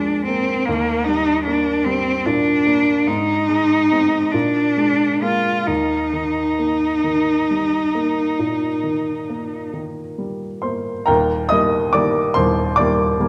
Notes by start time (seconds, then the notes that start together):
Already playing: D#2 F3 G#3 A#3 D4
0.26 A#3 C4
0.65 D#2 A#3
1.05 G3 D#4
1.44 A#3 D4
1.85 G3 C4
2.25 A#2 D4
2.66 A#3
3.07 G#2 D#4
3.49 G#3
3.91 G#3 C4
4.32 A#2 D4
4.77 G#3
5.22 G#3 A#3 F4
5.67 D#2 D#4
6.13 D#3
6.59 A#3
7.04 D#3
7.51 G3
7.95 A#3
8.39 A#2
8.83 D#3
9.30 A#3
9.73 D#3
10.18 G3
10.62 A#3 C5 C6
11.06 D#1 D#2 A#4 G5 A#5
11.49 D#3 G3 A#3 D#5 D#6
11.93 D#3 G3 A#3 D5 D6
12.34 D#1 D#2 C5 C6
12.76 D#3 G3 A#3 D5 D6
13.20 D#3 G3 A#3